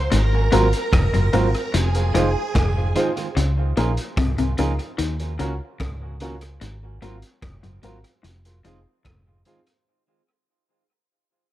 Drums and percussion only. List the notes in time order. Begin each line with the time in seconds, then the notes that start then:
0.12 closed hi-hat
0.52 closed hi-hat
0.73 closed hi-hat
0.93 kick, cross-stick, closed hi-hat
1.14 closed hi-hat
1.33 closed hi-hat
1.54 closed hi-hat
1.74 closed hi-hat
1.95 closed hi-hat
2.15 cross-stick, closed hi-hat
2.55 kick, cross-stick, closed hi-hat
2.96 closed hi-hat
3.17 closed hi-hat
3.37 closed hi-hat
3.77 closed hi-hat
3.97 closed hi-hat
4.17 kick, cross-stick, closed hi-hat
4.38 closed hi-hat
4.58 closed hi-hat
4.79 closed hi-hat
4.99 closed hi-hat
5.20 closed hi-hat
5.39 closed hi-hat
5.80 kick, cross-stick, closed hi-hat
6.20 closed hi-hat
6.41 closed hi-hat
6.61 closed hi-hat
7.02 closed hi-hat
7.22 closed hi-hat
7.42 kick, cross-stick, closed hi-hat
7.64 closed hi-hat
7.83 closed hi-hat
8.04 closed hi-hat
8.24 closed hi-hat
8.45 closed hi-hat
8.65 closed hi-hat
9.05 kick, cross-stick, closed hi-hat
9.45 closed hi-hat
9.67 closed hi-hat